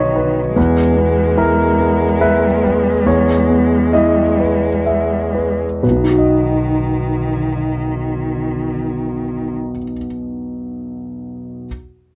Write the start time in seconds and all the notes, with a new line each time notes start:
Already playing: B1 D#3 B3 D#4 B4 C#5 D#5
0.16 B4
0.56 E2 G#3 B4
0.97 B3
1.37 E4 A#4
1.79 B3
2.21 B4 E5
2.64 B4
3.06 E2 C#5
3.49 B3
3.93 E4 D#5
4.40 B4
4.86 E5
5.35 B4
5.83 B1 D#3 B4
5.90 B2
5.97 B3
6.04 D#4
6.11 F#4
6.18 D#5